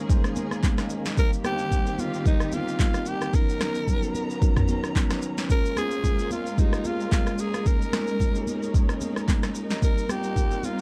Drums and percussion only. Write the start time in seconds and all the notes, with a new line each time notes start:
0.10 kick, low conga, shaker
0.24 cross-stick, shaker
0.36 high conga, shaker
0.51 cross-stick, shaker
0.63 kick, clap, high conga, low conga, shaker
0.78 cross-stick, snare, shaker
0.90 shaker
1.05 snare, shaker
1.17 kick, shaker
1.33 shaker
1.44 cross-stick, high conga, shaker
1.58 shaker
1.71 kick, low conga, shaker
1.86 shaker
1.99 high conga, shaker
2.14 shaker
2.26 kick, low conga, shaker
2.40 cross-stick, shaker
2.52 high conga, shaker
2.68 shaker
2.79 kick, clap, high conga, low conga, shaker
2.94 cross-stick, shaker
3.06 shaker
3.21 cross-stick, shaker
3.34 kick, shaker
3.49 shaker
3.61 cross-stick, snare, high conga, shaker
3.75 shaker
3.87 kick, low conga, shaker
4.03 shaker
4.15 high conga, shaker
4.30 shaker
4.42 kick, low conga, shaker
4.57 kick, cross-stick, mid tom, shaker
4.68 high conga, shaker
4.84 cross-stick, shaker
4.96 kick, clap, high conga, low conga, shaker
5.10 cross-stick, snare, high conga, shaker
5.22 shaker
5.38 snare, shaker
5.50 kick, shaker
5.66 shaker
5.77 cross-stick, high conga, shaker
5.91 shaker
6.04 kick, low conga, shaker
6.19 shaker
6.31 high conga, shaker
6.46 shaker
6.58 kick, low conga, shaker
6.73 cross-stick, shaker
6.84 high conga, shaker
7.01 shaker
7.12 kick, clap, high conga, low conga, shaker
7.27 cross-stick, shaker
7.38 shaker
7.54 cross-stick, shaker
7.66 kick, shaker
7.82 shaker
7.93 cross-stick, snare, high conga, shaker
8.07 shaker
8.20 kick, low conga, shaker
8.35 shaker
8.47 high conga, shaker
8.63 shaker
8.74 kick, low conga, shaker
8.89 cross-stick, shaker
9.01 high conga, shaker
9.16 cross-stick, shaker
9.28 kick, clap, high conga, low conga, shaker
9.43 cross-stick, snare, shaker
9.55 shaker
9.70 snare, shaker
9.82 kick, shaker
9.98 shaker
10.09 cross-stick, high conga, shaker
10.23 shaker
10.36 kick, low conga, shaker
10.51 shaker
10.63 high conga, shaker